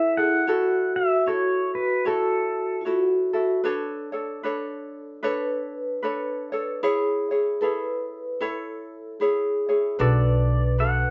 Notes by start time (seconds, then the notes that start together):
Already playing: E4 G#4 A4 C#5 E5
0.17 E4 G#4 A4 F#5
0.47 E4 F#4 A4 C#5
0.96 E5
1.26 E4 F#4 A4 C#5
1.75 B4
2.05 E4 F#4 A4 C#5
2.81 F4 C#5
2.86 E4 F#4 A4
3.33 E4 F#4 A4
3.64 D4 A4 B4 C#5
4.12 D4 A4 C#5
4.43 D4 A4 B4 C#5
5.23 D4 A4 B4 C#5
6.03 D4 A4 B4 C#5
6.52 D4 A4 C#5
6.83 E4 G#4 C#5
7.31 E4 G#4 C#5
7.61 E4 G#4 A4 B4 C#5
8.40 E4 A4 C#5
9.20 E4 G#4 C#5
9.69 E4 G#4 C#5
9.99 B1 D4 F#4 A4 B4 D5
10.78 D4 F#4 A4 B4 F#5